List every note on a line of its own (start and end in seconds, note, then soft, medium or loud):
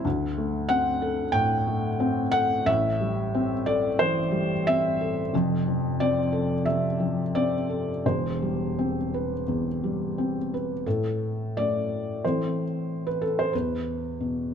0.05 1.32 D2 medium
0.38 0.90 A3 soft
0.69 1.22 C4 medium
0.69 1.35 F#5 loud
1.02 1.55 A4 medium
1.32 1.87 A2 medium
1.32 2.32 G5 loud
1.67 2.20 A3 medium
2.00 2.53 C4 medium
2.32 2.66 A4 medium
2.32 2.66 F#5 loud
2.66 3.95 A1 medium
2.66 3.96 A2 medium
2.66 3.66 E5 loud
3.01 3.53 G3 soft
3.34 3.87 C4 medium
3.66 4.20 A4 medium
3.66 3.99 D5 medium
3.99 4.53 E3 medium
3.99 4.66 C5 loud
4.31 4.85 G3 medium
4.67 5.20 C4 medium
4.67 5.32 E5 loud
5.01 5.33 A4 medium
5.33 6.62 F1 medium
5.33 6.62 F2 medium
5.68 6.19 F3 soft
6.00 6.53 C4 medium
6.00 6.66 D5 medium
6.33 6.86 A4 medium
6.66 7.20 C3 soft
6.66 7.34 E5 medium
7.00 7.54 F3 soft
7.35 7.90 C4 medium
7.35 8.04 D5 medium
7.70 8.04 A4 soft
8.06 9.42 E1 medium
8.06 9.43 E2 medium
8.06 10.51 C5 medium
8.42 8.97 G3 soft
8.79 9.33 C4 medium
9.14 9.68 B4 soft
9.48 10.82 E2 medium
9.84 10.38 G3 soft
10.18 10.73 C4 medium
10.54 10.87 B4 soft
10.86 13.50 A2 soft
10.86 11.56 A4 medium
11.57 12.63 A3 soft
11.57 12.23 D5 medium
12.24 13.50 E3 soft
12.24 13.51 C4 soft
12.24 13.20 A4 soft
12.24 13.05 C5 medium
13.07 13.21 B4 medium
13.22 13.37 A4 medium
13.39 13.54 C5 medium
13.53 14.54 E2 soft
13.53 14.54 B4 medium
14.20 14.54 B2 soft